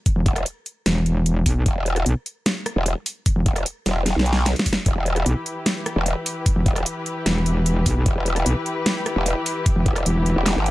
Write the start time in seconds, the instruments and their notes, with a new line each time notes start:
0.06 kick, closed hi-hat
0.16 wobble bass E1
0.26 wobble bass E1, kick, closed hi-hat
0.36 cross-stick, closed hi-hat
0.46 closed hi-hat
0.66 closed hi-hat
0.86 wobble bass E1, snare, closed hi-hat
1.06 closed hi-hat
1.26 closed hi-hat
1.46 wobble bass B1, kick, open hi-hat
1.66 wobble bass E1, kick, closed hi-hat
1.86 closed hi-hat
1.96 cross-stick, closed hi-hat
2.06 wobble bass B1, closed hi-hat
2.26 closed hi-hat
2.46 snare, closed hi-hat
2.66 cross-stick, closed hi-hat
2.76 wobble bass E1
2.86 closed hi-hat
3.06 open hi-hat
3.26 kick, closed hi-hat
3.36 wobble bass E1
3.46 wobble bass E1, kick, closed hi-hat
3.56 cross-stick, closed hi-hat
3.66 closed hi-hat
3.86 wobble bass E1, snare, open hi-hat
4.06 snare, closed hi-hat
4.16 wobble bass B1, snare
4.26 closed hi-hat
4.33 snare
4.46 snare, closed hi-hat
4.56 snare, closed hi-hat
4.66 kick, open hi-hat
4.73 snare
4.86 wobble bass E1, string section E3 E4 G4 B4, kick, closed hi-hat
5.06 closed hi-hat
5.16 cross-stick, closed hi-hat
5.26 wobble bass B1, closed hi-hat
5.46 closed hi-hat
5.66 snare, closed hi-hat
5.86 cross-stick, closed hi-hat
5.96 wobble bass E1
6.06 closed hi-hat
6.26 open hi-hat
6.46 kick, closed hi-hat
6.56 wobble bass E1
6.66 wobble bass E1, kick, closed hi-hat
6.76 cross-stick, closed hi-hat
6.86 closed hi-hat
7.06 closed hi-hat
7.26 wobble bass E1, snare, closed hi-hat
7.46 closed hi-hat
7.66 closed hi-hat
7.86 wobble bass B1, kick, open hi-hat
8.06 wobble bass E1, kick, closed hi-hat
8.26 closed hi-hat
8.36 cross-stick, closed hi-hat
8.46 wobble bass B1, closed hi-hat
8.66 closed hi-hat
8.86 snare, closed hi-hat
9.06 cross-stick, closed hi-hat
9.16 wobble bass E1
9.26 closed hi-hat
9.46 open hi-hat
9.66 kick, closed hi-hat
9.76 wobble bass E1
9.86 wobble bass E1, kick, closed hi-hat
9.96 cross-stick, closed hi-hat
10.06 wobble bass E1, closed hi-hat
10.26 closed hi-hat
10.36 wobble bass E1
10.46 snare, closed hi-hat
10.56 wobble bass G1
10.66 closed hi-hat